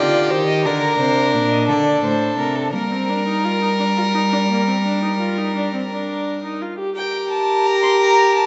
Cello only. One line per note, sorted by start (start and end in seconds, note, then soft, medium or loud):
0.00 0.32 D3 medium
0.31 0.67 D#3 medium
0.65 0.99 D3 medium
0.99 1.35 C3 medium
1.34 1.70 A#2 medium
1.68 2.02 D3 medium
2.03 2.37 A2 medium
2.38 2.75 C3 medium
2.73 6.61 G3 medium